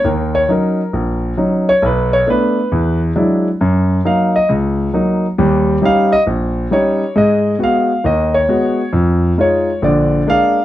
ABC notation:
X:1
M:4/4
L:1/8
Q:"Swing" 1/4=135
K:Ebm
V:1 name="Grand piano"
B d B3 z2 d | =B d B3 z3 | z2 f e z4 | z2 f e z2 d2 |
e2 f2 e d3 | z2 d2 =d2 f2 |]
V:2 name="Grand piano" clef=bass
[E,,E,]2 [G,DE] z B,,,2 [G,DE] z | =B,,,2 [=A,=B,=D] z =E,,2 [^F,^G,D=E] z | G,,2 [G,B,E] z D,,2 [G,B,E] z | [E,,=G,]2 [G,DE] z B,,,2 [G,DE] z |
[A,,A,]2 [A,CG] z [E,,E,]2 [A,CG] z | F,,2 [A,EF] z [B,,,=D,]2 [A,B,=D] z |]